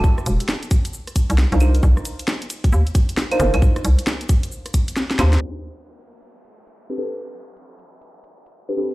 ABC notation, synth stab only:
X:1
M:4/4
L:1/16
Q:"Swing 16ths" 1/4=134
K:Clyd
V:1 name="Synth stab"
[DEFGA]6 z6 z [D_E=F_Bc] [DEFBc]2- | [D_E=F_Bc]12- [DEFBc] [DEFBc] [DEFBc]2- | [D_E=F_Bc]12- [DEFBc] z [DEFBc] z | z12 z [CDGAB] [CDGAB]2- |
[CDGAB]12- [CDGAB] [CDGAB] [CDGAB]2 |]